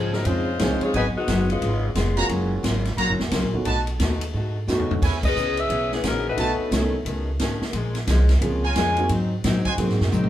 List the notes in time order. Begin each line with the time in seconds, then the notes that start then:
Already playing: G#2 C#3 F3 G#3 C4 C#4 G#4
0.13 F#3 C4 D#4 A#4, snare
0.24 F2 C#3 F3 G#3 C4 C#4 D#4 F4 C5, ride
0.59 C2 C#3 F3 G#3 C4 C#4 D#4 G#4, snare, hi-hat pedal, ride
0.81 G#3 C4 F4 C#5, muted upright bass stroke, ride
0.93 G#1 G#2 F#3 G#3 B3 D#4 F#4 B4 D#5 G#5, ride
1.15 D#3 G#3 B3 F#4, muted upright bass stroke
1.28 F#1 G#2 F#3 B3 D#4, snare, hi-hat pedal, ride
1.50 G#3 B3 C#4 F4, ride
1.61 G#1 C#3 G#3 B3 F4, ride
1.95 F1 C#3 G#3 B3 F4, snare, hi-hat pedal, ride
2.17 G#3 A#3 C#4 F4 F#4 C#5 F5 A#5, ride
2.28 F#1 F#3 A#3 C#4 F4, ride
2.63 G#1 F#3 A#3 C#4 F4, snare, hi-hat pedal, ride
2.85 snare, ride
2.97 A#1 F#3 A#3 C#4 F4 F#4 C#5 F5 A#5, ride
3.09 F#1
3.19 F1, snare
3.31 C#2 F#3 A#3 C#4 F4, snare, hi-hat pedal, ride
3.43 A#1
3.54 F#1 A3 B3 C#4 D#4 F#4
3.65 B1 B2 A3 D#4 F#4 B4 D#5 A5, ride
3.87 ride
3.99 D#2 B2 A3 D#4 F#4, snare, hi-hat pedal, ride
4.21 ride
4.33 G#2 B2 A3 D#4 F#4
4.67 F#2 B2 A3 B3 C#4 D#4 F#4, snare, hi-hat pedal
4.79 D#2, floor tom
4.90 B1, floor tom
5.02 E2 E3 B3 C#4 E4 G#4 B4 C#5 G#5, kick, crash
5.23 C#4 G#4 B4 D#5, kick, crash
5.36 C#2 E3 B3 C#4 G#4, hi-hat pedal
5.57 C#4 G#4 B4 E5, ride
5.69 B1 E3 B3 C#4 G#4, ride
5.92 E3 B3 C#4 G#4, snare
6.03 A#1 E3 B3 C#4 G#4, snare, hi-hat pedal, ride
6.08 F#3 B3 D#4 A#4
6.29 A3 D#4 F#4 B4
6.37 B1 B2 D#3 A3 B3 C#4 D#4 F#4 B4 C#5 A5, ride
6.59 muted upright bass stroke
6.71 C2 B2 D#3 A3 B3 C#4 D#4 A4, snare, hi-hat pedal, ride
7.05 C#2 B2 D#3 A3 C#4, ride
7.39 G#1 B2 D#3 A3 C#4, snare, hi-hat pedal, ride
7.61 muted upright bass stroke, snare
7.73 A#1 A#2 F3 G#3 C#4, ride
7.95 snare, ride
8.07 C2 A#2 F3 G#3 C#4, snare, hi-hat pedal, ride
8.29 snare, ride
8.41 C#2 A#2 F3 G#3 A#3 C4 C#4 F4 G#4, ride
8.63 F4 A#4 C#5 G#5
8.75 F2 A#2 F3 G#3 C#4, snare, hi-hat pedal, ride
8.97 A#3 C4 D#4 F#4 G#4, ride
9.09 G#2 F#3 C4 D#4, ride
9.44 G#2 A#2 F#3 C4 D#4, snare, hi-hat pedal, ride
9.65 F#4 C5 D#5 G#5, muted upright bass stroke, kick, ride
9.78 G#2 C3 F#3 A#3 C4 D#4 F#4 G#4, ride
9.89 G#2, snare
10.01 F#2, snare
10.12 G#2 A#2 F#3 C4 D#4, hi-hat pedal, mid tom
10.23 mid tom